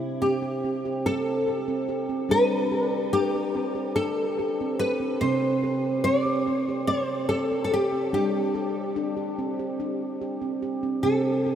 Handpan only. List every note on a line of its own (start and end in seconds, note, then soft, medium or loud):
0.00 2.25 C3 medium
0.00 0.22 G4 medium
0.22 0.43 C4 medium
0.42 0.63 G4 medium
0.65 0.85 C4 medium
0.85 1.06 G4 medium
1.06 1.47 C4 medium
1.47 1.68 G4 medium
1.68 1.89 C4 medium
1.89 2.09 G4 medium
2.09 2.30 C4 medium
2.29 5.17 G3 medium
2.29 2.72 D4 medium
2.72 3.13 G4 medium
3.14 3.35 D4 medium
3.35 3.55 G4 medium
3.55 3.76 C4 medium
3.75 3.96 G4 medium
3.97 4.38 D4 medium
4.39 4.60 G4 medium
4.61 4.81 C4 medium
4.80 5.01 G4 medium
5.00 5.21 C4 medium
5.22 8.10 C3 medium
5.22 5.64 C4 medium
5.63 6.05 G4 medium
6.06 6.26 C4 medium
6.25 6.47 G4 medium
6.47 6.68 C4 medium
6.69 6.89 G4 medium
6.88 7.30 C4 medium
7.31 7.51 G4 medium
7.51 7.72 C4 medium
7.72 7.93 G4 medium
7.93 8.13 C4 soft
8.13 11.01 G3 medium
8.13 8.55 D4 medium
8.55 8.97 G4 medium
8.96 9.17 D4 medium
9.17 9.38 G4 medium
9.39 9.59 C4 medium
9.59 9.80 G4 medium
9.80 10.21 D4 medium
10.21 10.42 G4 medium
10.41 10.63 C4 medium
10.62 10.84 G4 medium
10.83 11.04 C4 medium
11.03 11.55 C3 medium
11.03 11.47 C4 medium
11.46 11.55 G4 medium